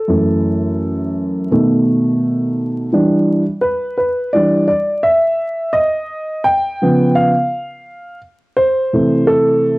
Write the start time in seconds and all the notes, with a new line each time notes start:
Already playing: A4
0.08 F#2 E3 A3
1.51 B2 D#3 A3
2.93 E3 G3 D4
3.61 B4
3.97 B4
4.33 E3 G3 D4 D5
4.68 D5
5.03 E5
5.73 D#5
6.44 G5
6.82 C#3 F3 B3
7.15 F5
8.57 C5
8.93 C3 E3 A3
9.27 A4